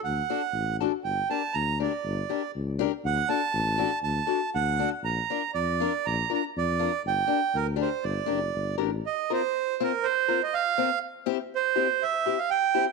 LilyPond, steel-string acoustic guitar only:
\new Staff \with { instrumentName = "Steel-string acoustic guitar" } { \time 2/4 \key g \minor \tempo 4 = 120 r8 <d' fis' a'>8 r8 <d' fis' a'>8 | r8 <d' g' bes'>8 r8 <d' g' bes'>8 | r8 <d' g' bes'>8 r8 <d' g' bes'>8 | r8 <d' fis' a'>8 r8 <d' fis' a'>8 |
r8 <d' fis' a'>8 r8 <d' fis' a'>8 | r8 <d' f' bes'>8 r8 <d' f' bes'>8 | r8 <d' f' bes'>8 r8 <d' f' bes'>8 | r8 <d' g' bes'>8 r8 <d' g' bes'>8 |
r8 <d' g' bes'>8 r8 <d' g' bes'>8 | \key c \dorian r8 <c' f' bes'>8 r8 <c' f' bes'>8 | r8 <c' f' bes'>8 r8 <c' f' bes'>8 | r8 <c' e' g'>8 r8 <c' e' g'>8 |
r8 <c' e' g'>8 r8 <c' e' g'>8 | }